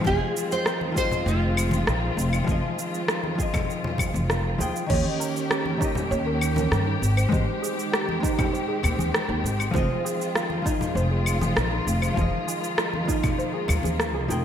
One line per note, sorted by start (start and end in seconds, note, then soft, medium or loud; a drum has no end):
0.00 4.86 D#3 medium
0.00 0.90 F3 medium
0.00 4.86 G#3 medium
0.00 4.86 C4 medium
0.00 0.92 F4 medium
0.04 0.16 F1 medium
0.04 4.86 F4 medium
0.04 0.93 G#4 medium
0.04 0.52 G#4 loud
0.04 0.94 D#5 medium
0.04 kick loud
0.04 high conga medium
0.04 cabasa soft
0.37 cabasa medium
0.52 0.96 C5 medium
0.52 cabasa soft
0.66 cross-stick medium
0.66 cabasa soft
0.81 high conga soft
0.92 2.42 F3 medium
0.92 2.43 F4 medium
0.96 2.44 G#4 medium
0.96 1.28 C5 medium
0.96 2.46 D#5 medium
0.96 kick medium
0.96 cabasa medium
1.11 low conga medium
1.11 cabasa soft
1.26 1.80 F1 loud
1.26 3.17 F4 medium
1.26 cabasa soft
1.57 cabasa medium
1.57 claves medium
1.71 high conga medium
1.71 low conga medium
1.71 cabasa soft
1.87 2.09 A#1 medium
1.87 cross-stick medium
1.87 cabasa soft
2.17 2.39 F1 medium
2.17 cabasa medium
2.33 cabasa soft
2.33 claves medium
2.44 2.59 F1 medium
2.44 3.33 F3 medium
2.44 3.34 F4 medium
2.44 kick loud
2.44 high conga medium
2.49 3.36 G#4 medium
2.49 3.37 D#5 medium
2.49 cabasa soft
2.79 cabasa medium
2.94 cabasa soft
3.08 cross-stick medium
3.08 cabasa soft
3.17 4.26 D#4 medium
3.24 high conga medium
3.35 4.55 F3 medium
3.35 4.56 F4 medium
3.35 kick medium
3.40 4.57 G#4 medium
3.40 4.59 D#5 medium
3.40 cabasa medium
3.54 kick medium
3.54 low conga medium
3.54 cabasa soft
3.54 claves medium
3.70 cabasa soft
3.84 low conga medium
3.98 kick medium
3.98 low conga medium
3.98 cabasa medium
3.98 claves medium
4.14 4.53 F1 medium
4.14 high conga medium
4.14 cabasa soft
4.30 cross-stick medium
4.30 cabasa soft
4.58 4.71 D#2 medium
4.58 4.86 F3 medium
4.58 4.86 F4 medium
4.58 4.87 G#4 medium
4.58 4.87 G5 medium
4.58 cabasa medium
4.76 cabasa soft
4.86 5.01 D#2 medium
4.86 5.75 D#3 medium
4.86 7.00 D#3 medium
4.86 7.00 A#3 medium
4.86 5.77 C#4 medium
4.86 7.00 C#4 medium
4.86 9.71 G4 medium
4.86 5.04 C#5 medium
4.86 kick loud
4.86 crash medium
4.86 high conga medium
4.91 5.78 G4 medium
4.91 5.79 D#5 medium
4.91 cabasa soft
5.20 5.28 A#4 loud
5.20 cabasa medium
5.36 cabasa soft
5.50 5.64 G4 medium
5.50 cross-stick loud
5.50 cabasa soft
5.66 high conga medium
5.77 6.98 D#3 medium
5.77 7.00 C#4 medium
5.77 5.94 D#4 loud
5.77 kick loud
5.82 7.01 G4 medium
5.82 7.02 D#5 medium
5.82 cabasa medium
5.95 low conga medium
5.95 cabasa soft
6.11 6.65 D#2 loud
6.11 6.25 C#5 medium
6.11 cabasa soft
6.26 6.40 A#4 medium
6.41 cabasa medium
6.41 claves medium
6.56 6.70 A#4 medium
6.56 high conga medium
6.56 low conga medium
6.56 cabasa soft
6.71 6.94 G2 medium
6.71 cross-stick medium
6.71 cabasa soft
6.87 6.95 D#4 medium
7.02 7.24 G#1 medium
7.02 9.72 D#3 medium
7.02 14.45 G#3 medium
7.02 12.13 C4 medium
7.02 cabasa medium
7.17 7.31 C5 medium
7.17 cabasa soft
7.17 claves medium
7.29 7.43 G#1 medium
7.29 8.18 G#3 medium
7.29 8.19 D#4 medium
7.29 7.46 C5 medium
7.29 kick loud
7.29 high conga medium
7.34 8.20 G4 medium
7.34 8.22 C5 medium
7.34 cabasa soft
7.62 7.71 G#4 medium
7.62 cabasa medium
7.79 cabasa soft
7.92 8.06 G4 loud
7.92 cross-stick loud
7.92 cabasa soft
8.09 high conga medium
8.20 9.70 G#3 medium
8.20 9.71 D#4 medium
8.20 8.37 D#4 loud
8.20 kick loud
8.24 9.72 G4 medium
8.24 9.73 C5 medium
8.24 cabasa medium
8.39 kick loud
8.39 low conga medium
8.39 cabasa soft
8.39 claves medium
8.53 8.67 C5 medium
8.53 cabasa soft
8.68 8.82 G#4 medium
8.83 8.95 D#2 medium
8.83 low conga medium
8.83 cabasa medium
8.83 claves medium
8.99 9.10 D#2 medium
8.99 9.13 G#4 medium
8.99 high conga medium
8.99 cabasa soft
9.14 cross-stick loud
9.14 cabasa soft
9.29 9.40 D#2 medium
9.29 9.37 D#4 medium
9.44 9.66 G#1 medium
9.44 cabasa medium
9.59 9.73 C5 medium
9.59 cabasa soft
9.59 claves medium
9.71 9.86 F1 medium
9.71 14.45 D#3 medium
9.71 10.60 F3 medium
9.71 10.61 F4 medium
9.71 14.45 F4 medium
9.71 9.88 C5 medium
9.71 kick loud
9.71 high conga loud
9.76 10.63 G#4 medium
9.76 10.64 D#5 medium
9.76 cabasa soft
10.05 10.13 G#4 medium
10.05 cabasa medium
10.21 cabasa soft
10.35 10.49 F4 loud
10.35 cross-stick medium
10.35 cabasa soft
10.50 high conga medium
10.62 12.12 F3 medium
10.62 10.79 D#4 loud
10.62 12.13 F4 medium
10.62 kick loud
10.67 12.14 G#4 medium
10.67 12.15 D#5 medium
10.67 cabasa medium
10.81 low conga medium
10.81 cabasa soft
10.95 11.50 F1 medium
10.95 11.10 C5 medium
10.95 cabasa soft
11.11 11.25 G#4 medium
11.26 cabasa medium
11.26 claves medium
11.41 11.55 G#4 medium
11.41 high conga medium
11.41 low conga medium
11.41 cabasa soft
11.56 11.78 A#1 medium
11.56 cross-stick loud
11.56 cabasa soft
11.72 11.80 D#4 medium
11.87 12.09 F1 medium
11.87 cabasa medium
12.02 12.16 C5 medium
12.02 cabasa soft
12.02 claves medium
12.14 12.28 F1 medium
12.14 13.03 F3 medium
12.14 14.45 A#3 medium
12.14 13.04 F4 medium
12.14 12.31 C5 medium
12.14 kick loud
12.14 high conga medium
12.18 13.05 G#4 medium
12.18 13.06 D#5 loud
12.18 cabasa soft
12.48 12.56 G#4 medium
12.48 cabasa medium
12.64 cabasa soft
12.78 12.92 F4 loud
12.78 cross-stick loud
12.78 cabasa soft
12.94 high conga medium
13.05 14.25 F3 medium
13.05 13.22 D#4 loud
13.05 14.26 F4 medium
13.05 kick loud
13.05 cabasa medium
13.10 14.27 G#4 medium
13.10 14.28 D#5 medium
13.23 kick loud
13.23 low conga medium
13.23 cabasa soft
13.23 claves medium
13.39 13.52 C5 medium
13.39 cabasa soft
13.54 13.67 G#4 medium
13.68 13.80 D#2 medium
13.68 low conga medium
13.68 cabasa medium
13.68 claves medium
13.83 14.14 D#2 medium
13.83 13.98 G#4 medium
13.83 high conga medium
13.83 cabasa soft
14.00 cross-stick medium
14.00 cabasa soft
14.14 14.25 C2 medium
14.14 14.29 G#4 medium
14.28 14.45 F1 medium
14.28 14.45 F3 medium
14.28 14.44 D#4 medium
14.28 14.45 F4 medium
14.28 14.45 G#4 medium
14.28 14.45 G5 medium
14.28 cabasa medium